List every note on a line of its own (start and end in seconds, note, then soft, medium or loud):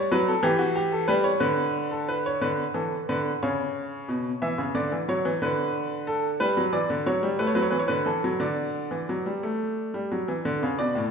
0.12 0.31 F#3 medium
0.12 0.27 B4 medium
0.28 0.43 A4 medium
0.43 1.06 E3 loud
0.43 0.59 G4 medium
0.59 0.75 F#4 medium
0.76 0.91 G4 medium
0.92 1.08 A4 medium
1.08 1.29 G3 loud
1.08 1.24 B4 medium
1.24 1.40 C#5 medium
1.40 2.39 D3 medium
1.40 1.89 B4 medium
1.91 2.08 A4 medium
2.09 2.25 B4 medium
2.26 2.42 C#5 medium
2.41 2.63 D3 medium
2.41 2.63 B4 medium
2.74 2.96 E3 medium
2.74 2.95 A4 medium
3.09 3.30 D3 medium
3.09 3.30 B4 medium
3.43 4.07 C#3 medium
3.43 4.39 C#5 medium
4.08 4.29 B2 medium
4.42 4.58 E3 medium
4.42 4.62 E5 medium
4.58 4.74 C#3 medium
4.75 4.91 D3 medium
4.75 4.95 D5 medium
4.92 5.08 E3 medium
5.09 5.24 F#3 medium
5.09 5.29 C#5 medium
5.25 5.41 E3 medium
5.42 6.37 D3 medium
5.42 6.05 B4 medium
6.07 6.27 A4 medium
6.40 6.56 G3 medium
6.40 6.60 B4 medium
6.57 6.73 F#3 medium
6.73 6.89 E3 medium
6.73 6.93 D5 medium
6.90 7.06 D3 medium
7.06 7.22 F#3 medium
7.06 7.27 C#5 medium
7.23 7.39 G3 medium
7.39 7.55 A3 medium
7.39 7.47 B4 medium
7.47 7.55 C#5 medium
7.55 7.72 F#3 medium
7.55 7.63 B4 medium
7.62 7.71 C#5 medium
7.70 7.89 E3 medium
7.70 7.79 B4 medium
7.79 7.88 C#5 medium
7.88 8.06 D3 medium
7.88 8.06 B4 medium
8.06 8.23 E3 medium
8.06 8.27 A4 medium
8.24 8.41 F#3 medium
8.40 8.90 D3 medium
8.40 10.07 D5 medium
8.91 9.08 E3 medium
9.09 9.26 F#3 medium
9.26 9.43 G3 medium
9.43 9.93 A3 medium
9.94 10.11 G3 medium
10.12 10.28 F#3 medium
10.28 10.45 E3 medium
10.45 10.61 D3 medium
10.63 10.79 C#3 medium
10.79 10.95 B2 medium
10.79 10.99 D5 medium
10.95 11.11 A2 medium